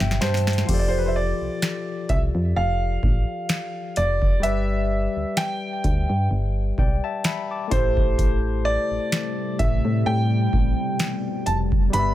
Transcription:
Already playing: B2 C3 E3 G3 G4 C5 D5 E5
0.00 G1 G5, snare
0.11 snare
0.21 G2 C5 A5, snare, closed hi-hat
0.34 snare, closed hi-hat
0.47 snare
0.53 closed hi-hat
0.58 snare
0.65 F3 F4, kick, closed hi-hat, crash
0.69 F1 G4 A4
0.74 D5
0.79 D5
0.88 C5
0.98 B4
1.06 C5 E5
1.16 D5
1.41 C2
1.62 snare, closed hi-hat
2.09 C2 E5, kick, closed hi-hat
2.35 F2
2.56 F1 F5
3.03 A1, kick
3.49 snare, closed hi-hat
3.96 F1 D5, closed hi-hat
4.22 kick
4.40 G3 G4 E5, closed hi-hat
4.44 G1 B4 D5
4.49 E5
5.17 D2
5.37 G5, snare, closed hi-hat
5.84 D2, kick, closed hi-hat
6.10 G2
6.31 G1
6.78 B1 D5 G5, kick
7.04 E5 A5
7.24 E5 B5, snare, closed hi-hat
7.51 A5 D6
7.68 A1 A3 E4 C5, kick, closed hi-hat
7.72 G4 A4
7.77 C5
7.97 kick
8.18 C3 G3 A3, kick, closed hi-hat
8.65 D5
8.91 A1
9.12 snare, closed hi-hat
9.59 A1 E5, kick, closed hi-hat
9.85 A2
10.06 A2 B2 G5
10.53 A1, kick
11.00 snare, closed hi-hat
11.46 F1 A5, closed hi-hat
11.72 kick
11.90 G1 G3 G4 B5, closed hi-hat
11.95 B4 D5
11.99 E5

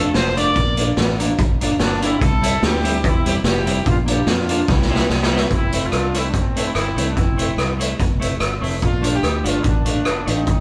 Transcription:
Already playing: F4 A4
0.14 F1 A4 C5, snare, closed hi-hat
0.37 A3 D4 F4 A#4 D5, closed hi-hat
0.56 A#1, kick, closed hi-hat
0.77 A#3 D4 F4, closed hi-hat
0.97 A1, snare, closed hi-hat
1.19 A#3 D4 F4, closed hi-hat
1.39 G1, kick, closed hi-hat
1.61 A#3 D4 F4, closed hi-hat
1.80 G1 A#3 D4, muted clean electric guitar stroke, snare, closed hi-hat
2.01 A#3 C4 D4 E4 F4, closed hi-hat
2.21 C2 E4 A4, kick, closed hi-hat
2.42 G3 C4 E4, closed hi-hat
2.62 D2 E4 G4, snare, closed hi-hat
2.83 G3 C4 E4, closed hi-hat
3.04 E2 C4 E4, kick, closed hi-hat
3.26 G3 C4 E4 G4, closed hi-hat
3.44 F1 E4 G4, snare, closed hi-hat
3.66 G3 C4 E4, closed hi-hat
3.86 A#1 D4 F4, kick, closed hi-hat
4.06 A#3 D4 F4, closed hi-hat
4.11 E4 G4
4.26 F2 D4 F4, snare, closed hi-hat
4.49 A#3 D4 F4, closed hi-hat
4.68 C2 C4 E4, kick, snare
4.82 snare
4.90 G3 C4 E4
4.96 snare
5.09 C2, muted clean electric guitar stroke, snare
5.23 snare
5.31 G3 C4 E4
5.37 snare
5.51 F1 C4, kick, closed hi-hat
5.55 E4
5.72 A3 C4 E4, closed hi-hat
5.85 D4 F4
5.92 C2, cross-stick, closed hi-hat
6.14 A3 C4 E4, closed hi-hat
6.28 D4
6.34 A1 A3 C4, kick, closed hi-hat
6.56 A3 C4 E4, closed hi-hat
6.67 C4 E4
6.75 G1 C4 E4, cross-stick, closed hi-hat
6.96 C2 A3 C4 E4, closed hi-hat
7.09 A#3 D4
7.17 F1 C4 E4, kick, closed hi-hat
7.37 A3 C4 E4, closed hi-hat
7.57 C2, cross-stick, closed hi-hat
7.79 A3 C4 E4, closed hi-hat
8.00 F1, kick, closed hi-hat
8.20 A3 C4 E4, closed hi-hat
8.40 G1, cross-stick, closed hi-hat
8.61 F1 A3 C4 E4, open hi-hat
8.82 A#1 D4 F4, kick, closed hi-hat
9.02 A3 D4 F4, closed hi-hat
9.14 E4 G4
9.23 D2, cross-stick, closed hi-hat
9.44 G1 A3 D4 F4, closed hi-hat
9.63 A1 A#3 D4, kick, closed hi-hat
9.85 A3 D4 F4, closed hi-hat
10.05 F1, cross-stick, closed hi-hat
10.26 A1 A3 D4 D#4 F4, closed hi-hat
10.30 C4
10.47 G#1, kick, closed hi-hat

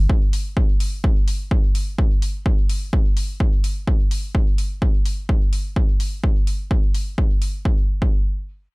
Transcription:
0.10 kick
0.33 open hi-hat
0.57 kick
0.80 open hi-hat
1.04 kick
1.28 open hi-hat
1.51 kick
1.75 open hi-hat
1.98 kick
2.22 open hi-hat
2.46 kick
2.69 open hi-hat
2.93 kick
3.17 open hi-hat
3.40 kick
3.64 open hi-hat
3.87 kick
4.11 open hi-hat
4.35 kick
4.58 open hi-hat
4.82 kick
5.05 open hi-hat
5.29 kick
5.53 open hi-hat
5.76 kick
6.00 open hi-hat
6.24 kick
6.47 open hi-hat
6.71 kick
6.94 open hi-hat
7.18 kick
7.42 open hi-hat
7.65 kick
8.02 kick

